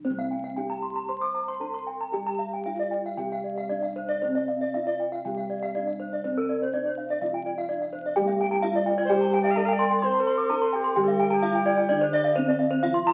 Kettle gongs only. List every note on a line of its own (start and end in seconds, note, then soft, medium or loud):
0.00 0.53 C3 medium
0.05 1.58 C4 soft
0.10 3.17 C2 medium
0.57 0.65 D4 soft
1.61 1.69 D4 soft
2.14 3.66 G4 medium
2.66 2.74 D4 soft
3.17 4.70 C3 medium
3.70 3.78 D4 soft
4.23 5.72 C4 soft
4.75 4.83 D4 soft
5.25 6.70 C3 medium
5.76 5.84 D4 soft
6.25 7.66 C4 soft
6.73 6.81 D4 soft
7.22 8.59 C3 soft
7.70 7.78 D4 soft
8.17 9.52 G4 soft
8.21 10.94 C2 medium
8.64 8.72 D4 soft
9.57 9.65 D4 soft
10.04 11.39 C5 medium
10.50 10.58 D4 soft
10.97 12.32 D3 medium
11.43 11.51 D4 soft
11.89 12.35 D4 medium
12.36 12.44 D4 soft
12.83 13.13 C3 medium